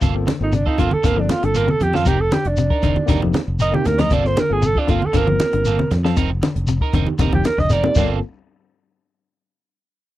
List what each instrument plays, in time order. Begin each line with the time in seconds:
0.01 fingered electric bass G1, clean electric guitar C3 A#3 F4 A4, muted clean electric guitar stroke, kick, closed hi-hat, shekere
0.15 tine electric piano A#3 C4 F4 A4, muted clean electric guitar stroke
0.27 clean electric guitar D3, muted clean electric guitar stroke, snare, closed hi-hat, high conga, shekere
0.40 fingered electric bass G1, tine electric piano A#3 C4 F4 A4, alto saxophone D#4
0.52 clean electric guitar C3, alto saxophone D4, muted clean electric guitar stroke, closed hi-hat, shekere
0.66 clean electric guitar C4 F4 A4, alto saxophone D#4, tine electric piano F4 A4, kick
0.78 fingered electric bass G1, clean electric guitar D3 A#3 C4 F4 A4, tine electric piano A#3 C4 F4 A4, alto saxophone F4, kick, closed hi-hat, low conga, shekere
0.91 alto saxophone A4, muted clean electric guitar stroke, high conga
1.03 fingered electric bass G1, clean electric guitar D3 A#3 C4 F4 A4, tine electric piano A#3 C4 F4 A4, alto saxophone A#4, kick, closed hi-hat, shekere
1.17 clean electric guitar F3, alto saxophone D4, muted clean electric guitar stroke
1.29 alto saxophone F4, muted clean electric guitar stroke, snare, closed hi-hat, high conga, shekere
1.43 fingered electric bass G1, clean electric guitar D3, alto saxophone A4, closed hi-hat
1.55 clean electric guitar A#3 C4 F4 A4, alto saxophone A#4, closed hi-hat, shekere
1.68 clean electric guitar C3, alto saxophone A4, muted clean electric guitar stroke, high conga
1.80 fingered electric bass F2, alto saxophone G4, muted clean electric guitar stroke, closed hi-hat, high conga, low conga, shekere
1.93 clean electric guitar F3 C4 F4 A4, alto saxophone F4, snare, high conga
2.05 fingered electric bass F1, clean electric guitar C3 C4 D#4 A#4, alto saxophone G4, kick, closed hi-hat, shekere
2.19 alto saxophone A4, muted clean electric guitar stroke
2.31 clean electric guitar D3, alto saxophone G4, muted clean electric guitar stroke, snare, closed hi-hat, high conga, shekere
2.45 fingered electric bass F1, alto saxophone D4, closed hi-hat
2.57 clean electric guitar C3, muted clean electric guitar stroke, closed hi-hat, shekere
2.70 clean electric guitar D#4 A#4, kick
2.82 fingered electric bass F1, clean electric guitar D3 C4 D#4 A#4, kick, closed hi-hat, low conga, shekere
2.95 tine electric piano D#4 G4, muted clean electric guitar stroke, high conga
3.06 fingered electric bass F1, clean electric guitar D3 C4 D#4 A#4, tine electric piano A#3 C4 D#4 G4, kick, snare, closed hi-hat, shekere
3.22 clean electric guitar F3, muted clean electric guitar stroke, low conga
3.33 muted clean electric guitar stroke, snare, closed hi-hat, high conga, shekere
3.48 fingered electric bass F1
3.59 clean electric guitar C4 D#4 A#4, alto saxophone D#5, closed hi-hat, shekere
3.72 clean electric guitar C3, tine electric piano A#3 C4 D#4 G4, alto saxophone G4, muted clean electric guitar stroke, high conga
3.85 fingered electric bass D2, alto saxophone A#4, muted clean electric guitar stroke, snare, closed hi-hat, low conga, shekere
3.98 clean electric guitar F3 D#4 A#4, alto saxophone D#5, snare, closed hi-hat, high conga
4.10 fingered electric bass G1, clean electric guitar C3 A#3 C4 F4 A4, alto saxophone D5, kick, closed hi-hat, shekere
4.24 tine electric piano A#3 C4 F4 A4, alto saxophone C5, muted clean electric guitar stroke, snare
4.36 clean electric guitar D3, alto saxophone A#4, muted clean electric guitar stroke, snare, closed hi-hat, high conga, shekere
4.50 fingered electric bass G1, tine electric piano A#3 C4 F4 A4, alto saxophone G#4
4.62 clean electric guitar C3, alto saxophone A4, muted clean electric guitar stroke, closed hi-hat, shekere
4.75 clean electric guitar C4 F4 A4, alto saxophone D4, tine electric piano F4 A4, kick
4.87 fingered electric bass G1, clean electric guitar D3 A#3 C4 F4 A4, tine electric piano A#3 C4 F4 A4, alto saxophone F4, kick, closed hi-hat, low conga, shekere
5.02 alto saxophone A4, muted clean electric guitar stroke, high conga
5.13 fingered electric bass G1, clean electric guitar D3 A#3 C4 F4 A4, tine electric piano A#3 C4 F4 A#4, alto saxophone A#4, kick, closed hi-hat, shekere
5.27 clean electric guitar F3, muted clean electric guitar stroke, high conga
5.39 muted clean electric guitar stroke, snare, closed hi-hat, high conga, shekere
5.53 fingered electric bass G1, clean electric guitar D3, closed hi-hat
5.65 clean electric guitar A#3 C4 F4 A4, closed hi-hat, shekere
5.79 clean electric guitar C3, muted clean electric guitar stroke, high conga
5.91 fingered electric bass F2, muted clean electric guitar stroke, snare, closed hi-hat, low conga, shekere
6.04 clean electric guitar F3 C4 F4 A4, snare
6.16 fingered electric bass F1, clean electric guitar C3 C4 D#4 A#4, kick, closed hi-hat, shekere
6.31 muted clean electric guitar stroke
6.42 clean electric guitar D3, muted clean electric guitar stroke, snare, closed hi-hat, high conga, shekere
6.56 fingered electric bass F1, closed hi-hat
6.67 clean electric guitar C3, muted clean electric guitar stroke, closed hi-hat, shekere
6.81 clean electric guitar D#4 A#4, kick
6.93 fingered electric bass F1, clean electric guitar D3 C4 D#4 A#4, kick, closed hi-hat, low conga, shekere
7.06 tine electric piano D#4 G4, muted clean electric guitar stroke, high conga
7.19 fingered electric bass F1, clean electric guitar D3 C4 D#4 A#4, tine electric piano A#3 C4 D#4 G4, kick, closed hi-hat, high conga, shekere
7.32 clean electric guitar F3, alto saxophone G4, muted clean electric guitar stroke, kick, high conga
7.44 alto saxophone A#4, muted clean electric guitar stroke, snare, closed hi-hat, high conga, shekere
7.58 fingered electric bass F1, clean electric guitar D3, alto saxophone D#5, kick, snare
7.69 clean electric guitar C4 D#4 A#4, alto saxophone D5, closed hi-hat, low conga, shekere
7.83 clean electric guitar C3, tine electric piano A#3 C4 D#4 G4, low conga
7.95 fingered electric bass G1, clean electric guitar G2 A#3 C4, tine electric piano A#3 C4 F4 A4, kick, crash, low conga, shekere
7.99 clean electric guitar F4 A4